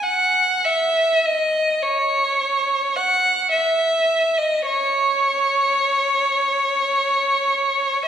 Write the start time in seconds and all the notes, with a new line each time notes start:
0.03 F#5
0.65 E5
1.25 D#5
1.82 C#5
2.96 F#5
3.51 E5
4.37 D#5
4.66 C#5